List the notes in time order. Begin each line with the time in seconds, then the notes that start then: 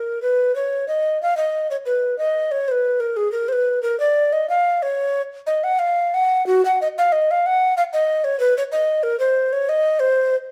Already playing: A#4
0.22 B4
0.56 C#5
0.88 D#5
1.23 F5
1.37 D#5
1.71 C#5
1.86 B4
2.18 D#5
2.51 C#5
2.68 B4 C5
3.00 A#4
3.17 G#4
3.32 A#4
3.48 C5
3.53 B4
3.83 A#4
4.00 D5
4.33 D#5
4.49 F5
4.82 C#5
5.47 D#5
5.64 F#5
5.79 F5
6.14 F#5
6.47 F#4
6.65 F#5
6.82 D#5
6.98 F5
7.12 D#5
7.31 F5
7.46 F#5
7.77 F5
7.93 D#5
8.24 C#5
8.40 B4
8.58 C#5
8.72 D#5
9.03 A#4
9.20 C5
9.53 C#5
9.69 D#5
10.00 C5